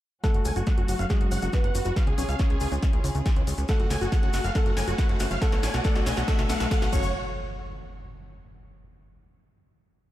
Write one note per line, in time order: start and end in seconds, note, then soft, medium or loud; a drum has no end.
0.24 1.95 F#3 medium
0.24 1.01 A3 medium
0.24 5.38 C#4 medium
0.24 0.26 F#4 medium
0.24 1.95 F#4 medium
0.24 1.01 A4 medium
0.24 0.31 F#5 loud
0.24 kick loud
0.24 snare soft
0.24 closed hi-hat medium
0.24 mid tom medium
0.24 riser medium
0.24 cabasa soft
0.34 0.41 F#1 medium
0.34 0.42 F#4 medium
0.34 closed hi-hat medium
0.45 0.52 C#2 medium
0.45 0.50 F#5 medium
0.45 0.53 G#5 medium
0.45 open hi-hat loud
0.45 cabasa medium
0.56 0.63 F#1 medium
0.56 0.63 F#4 medium
0.56 closed hi-hat medium
0.56 cabasa medium
0.66 0.71 C#5 medium
0.66 0.74 F#5 loud
0.66 kick loud
0.66 snare soft
0.66 closed hi-hat medium
0.66 cabasa soft
0.78 0.84 F#1 medium
0.78 0.84 F#4 loud
0.78 0.85 F#4 medium
0.78 closed hi-hat medium
0.88 0.95 F#1 loud
0.88 0.91 F#4 medium
0.88 0.96 F#4 medium
0.88 open hi-hat loud
0.88 cabasa medium
0.99 1.06 F#1 medium
0.99 1.06 F5 medium
0.99 closed hi-hat medium
0.99 cabasa medium
1.09 1.51 G#3 medium
1.09 1.17 F#4 medium
1.09 1.51 G#4 medium
1.09 1.14 F#5 medium
1.09 kick loud
1.09 snare soft
1.09 closed hi-hat medium
1.09 cabasa soft
1.21 1.27 F#1 medium
1.21 1.27 F#4 medium
1.21 1.28 F#4 medium
1.21 closed hi-hat medium
1.31 1.38 F#1 loud
1.31 1.36 C#5 medium
1.31 1.39 F#5 medium
1.31 open hi-hat loud
1.31 cabasa medium
1.42 1.49 F#1 medium
1.42 1.49 F#4 loud
1.42 1.50 F#4 medium
1.42 closed hi-hat medium
1.42 cabasa medium
1.53 2.09 B3 medium
1.53 1.56 F#4 medium
1.53 1.61 F#4 medium
1.53 2.09 B4 medium
1.53 kick loud
1.53 snare medium
1.53 closed hi-hat medium
1.53 cabasa soft
1.64 1.70 F#1 medium
1.64 1.71 F#5 medium
1.64 closed hi-hat medium
1.64 mid tom medium
1.75 1.81 F#1 loud
1.75 1.82 F#4 medium
1.75 1.79 F#5 medium
1.75 open hi-hat loud
1.75 mid tom medium
1.75 cabasa loud
1.85 1.92 F#1 medium
1.85 1.92 F#4 medium
1.85 1.93 F#4 medium
1.85 closed hi-hat medium
1.85 cabasa soft
1.96 3.67 C#3 medium
1.96 3.67 F4 medium
1.96 2.01 G#4 medium
1.96 3.67 G#4 medium
1.96 2.04 F5 loud
1.96 kick loud
1.96 snare medium
1.96 closed hi-hat medium
1.96 mid tom medium
1.96 cabasa soft
2.07 2.14 C#2 medium
2.07 2.14 C#4 loud
2.07 2.15 G#4 medium
2.07 closed hi-hat medium
2.18 2.24 B1 medium
2.18 2.20 C#4 medium
2.18 3.60 C#4 medium
2.18 2.25 G#4 medium
2.18 3.60 C#5 medium
2.18 open hi-hat loud
2.18 cabasa medium
2.29 2.35 C#2 medium
2.29 2.36 F5 medium
2.29 closed hi-hat medium
2.29 cabasa medium
2.39 2.47 G#4 medium
2.39 2.44 C#5 medium
2.39 kick loud
2.39 snare medium
2.39 closed hi-hat medium
2.39 cabasa soft
2.50 2.57 C#2 medium
2.50 2.57 C#4 medium
2.50 2.58 G#4 medium
2.50 closed hi-hat medium
2.60 2.68 C#2 loud
2.60 2.65 G#4 medium
2.60 2.68 G#4 medium
2.60 open hi-hat loud
2.60 cabasa medium
2.72 2.78 C#2 medium
2.72 2.78 C#4 loud
2.72 closed hi-hat medium
2.72 cabasa medium
2.82 2.85 C#4 medium
2.82 kick loud
2.82 snare medium
2.82 closed hi-hat medium
2.82 cabasa soft
2.93 3.00 C#2 medium
2.93 closed hi-hat medium
3.04 3.11 C#2 loud
3.04 3.09 C#5 medium
3.04 open hi-hat loud
3.04 cabasa medium
3.15 3.22 C#2 loud
3.15 3.22 C#4 medium
3.15 closed hi-hat medium
3.15 cabasa medium
3.26 3.30 G#4 medium
3.26 kick loud
3.26 snare medium
3.26 closed hi-hat medium
3.26 cabasa soft
3.36 3.43 C#2 medium
3.36 3.43 C#4 loud
3.36 closed hi-hat medium
3.47 3.54 C#2 loud
3.47 3.50 C#4 medium
3.47 open hi-hat loud
3.47 cabasa loud
3.58 3.65 C#2 medium
3.58 closed hi-hat medium
3.58 cabasa medium
3.68 4.47 A3 medium
3.68 6.90 A3 medium
3.68 5.40 F#4 medium
3.68 4.47 A4 medium
3.68 3.73 F#5 medium
3.68 3.76 F#5 medium
3.68 kick loud
3.68 snare medium
3.68 closed hi-hat medium
3.68 mid tom medium
3.68 cabasa soft
3.80 3.86 F#1 medium
3.80 3.86 F#4 medium
3.80 3.87 F#4 medium
3.80 closed hi-hat medium
3.90 3.97 C#2 loud
3.90 3.95 C#5 medium
3.90 3.98 G#5 medium
3.90 snare medium
3.90 open hi-hat loud
3.90 cabasa medium
4.01 4.08 F#1 medium
4.01 4.08 F#4 medium
4.01 4.09 F#4 medium
4.01 closed hi-hat medium
4.01 cabasa medium
4.12 4.15 F#4 medium
4.12 4.20 F#5 medium
4.12 kick loud
4.12 snare medium
4.12 closed hi-hat medium
4.12 cabasa soft
4.23 4.29 F#1 medium
4.23 4.30 F#4 medium
4.23 closed hi-hat medium
4.33 4.40 F#1 loud
4.33 4.41 F#4 medium
4.33 4.38 F#5 medium
4.33 snare medium
4.33 open hi-hat loud
4.33 cabasa medium
4.44 4.51 F#1 medium
4.44 4.51 F#4 medium
4.44 4.52 F5 medium
4.44 closed hi-hat medium
4.44 cabasa medium
4.55 5.33 A3 medium
4.55 5.33 A4 medium
4.55 4.63 F#5 medium
4.55 4.60 F#5 medium
4.55 kick loud
4.55 snare medium
4.55 closed hi-hat medium
4.55 cabasa soft
4.66 4.73 F#1 medium
4.66 4.73 F#4 medium
4.66 closed hi-hat medium
4.77 4.83 F#1 loud
4.77 4.81 C#5 medium
4.77 4.84 G#5 medium
4.77 snare medium
4.77 open hi-hat loud
4.77 cabasa loud
4.88 4.94 F#1 medium
4.88 4.95 F#4 medium
4.88 4.94 F#4 loud
4.88 closed hi-hat medium
4.88 cabasa medium
4.98 5.01 F#4 medium
4.98 5.06 F#5 medium
4.98 kick loud
4.98 snare medium
4.98 closed hi-hat medium
4.98 cabasa soft
5.09 5.16 F#1 medium
5.09 5.17 F#4 medium
5.09 closed hi-hat medium
5.09 mid tom medium
5.20 5.27 F#1 loud
5.20 5.27 F#4 medium
5.20 5.25 F#5 medium
5.20 snare medium
5.20 open hi-hat loud
5.20 mid tom medium
5.20 cabasa loud
5.31 5.37 F#1 medium
5.31 5.38 F#4 medium
5.31 5.38 F5 medium
5.31 closed hi-hat medium
5.31 cabasa soft
5.42 5.83 A3 medium
5.42 6.91 B3 medium
5.42 6.91 D4 medium
5.42 5.83 A4 loud
5.42 5.49 F#5 loud
5.42 5.46 F#5 medium
5.42 kick loud
5.42 snare medium
5.42 closed hi-hat medium
5.42 mid tom medium
5.42 cabasa soft
5.52 5.59 B1 medium
5.52 5.60 F#4 medium
5.52 5.59 F#4 medium
5.52 snare medium
5.52 closed hi-hat medium
5.63 5.70 A1 loud
5.63 5.68 C#5 medium
5.63 5.71 G#5 medium
5.63 snare loud
5.63 open hi-hat loud
5.63 cabasa medium
5.74 5.81 B1 medium
5.74 5.81 F#4 loud
5.74 5.81 F#4 medium
5.74 snare medium
5.74 closed hi-hat medium
5.74 cabasa medium
5.84 6.26 A3 medium
5.84 6.26 A4 loud
5.84 5.92 F#5 loud
5.84 5.89 F#5 medium
5.84 kick loud
5.84 snare medium
5.84 closed hi-hat medium
5.84 cabasa soft
5.96 6.02 B1 medium
5.96 6.03 F#4 medium
5.96 6.02 F#4 medium
5.96 snare medium
5.96 closed hi-hat medium
6.06 6.13 B1 loud
6.06 6.11 C#5 medium
6.06 6.14 G#5 medium
6.06 snare loud
6.06 open hi-hat loud
6.06 cabasa loud
6.17 6.24 B1 medium
6.17 6.24 F#4 medium
6.17 6.24 F#4 loud
6.17 snare medium
6.17 closed hi-hat medium
6.17 cabasa medium
6.28 6.48 A3 medium
6.28 6.48 A4 loud
6.28 6.35 F#5 loud
6.28 6.32 F#5 medium
6.28 kick loud
6.28 snare loud
6.28 closed hi-hat medium
6.28 cabasa soft
6.39 6.45 B1 medium
6.39 6.45 F#4 medium
6.39 6.46 F#4 medium
6.39 snare medium
6.39 closed hi-hat medium
6.39 mid tom medium
6.49 6.56 B1 medium
6.49 6.69 A3 medium
6.49 6.69 A4 loud
6.49 6.57 F#5 loud
6.49 6.54 F#5 medium
6.49 snare loud
6.49 open hi-hat loud
6.49 cabasa medium
6.60 6.67 B1 medium
6.60 6.68 F#4 medium
6.60 6.67 F#4 medium
6.60 snare loud
6.60 closed hi-hat medium
6.60 cabasa medium
6.71 6.91 A3 medium
6.71 6.91 A4 loud
6.71 6.78 F#5 loud
6.71 6.76 F#5 medium
6.71 kick loud
6.71 snare loud
6.71 closed hi-hat medium
6.71 cabasa soft
6.82 6.89 B1 medium
6.82 6.89 F#4 medium
6.82 snare loud
6.82 closed hi-hat medium
6.92 7.13 F#1 loud
6.92 7.13 F#3 medium
6.92 7.13 F#4 loud
6.92 7.13 F#4 medium
6.92 7.13 A4 medium
6.92 7.09 C#5 loud
6.92 7.09 C#5 medium
6.92 7.13 C#5 medium
6.92 kick loud
6.92 crash medium
6.92 impact medium
6.92 cabasa loud
7.03 cabasa medium